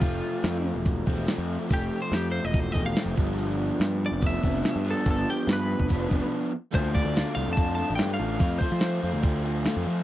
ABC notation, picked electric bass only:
X:1
M:4/4
L:1/16
Q:1/4=144
K:Flyd
V:1 name="Picked electric bass" clef=bass
F,,,2 z2 F,,3 E,,,3 E,,,2 z F,,2 z | F,,,2 z2 F,,3 E,,,3 E,,,2 z F,,, G,,,2- | G,,,4 G,,3 F,,,3 F,,,2 z G,,2 z | G,,,2 z2 G,,3 F,,,3 F,,, z4 z |
D,,3 D,,2 z C,, F,,4 A,,, G,,2 A,,,2 | F,,2 z F,3 F,, D,,6 F,, F,2 |]